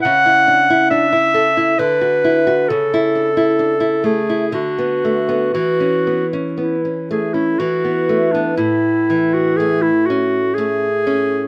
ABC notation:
X:1
M:3/4
L:1/16
Q:1/4=62
K:A
V:1 name="Clarinet"
f4 e4 B4 | A6 G2 F4 | F3 z E2 G E F3 D | E3 F G E F2 G4 |]
V:2 name="Nylon-string guitar"
C, E D E D E A E D, F E F | C, E D E D E A, E D, B, A, B, | E, C B, C B, C A, C E, B, A, B, | A,,2 E,2 A,2 C2 A,2 C2 |]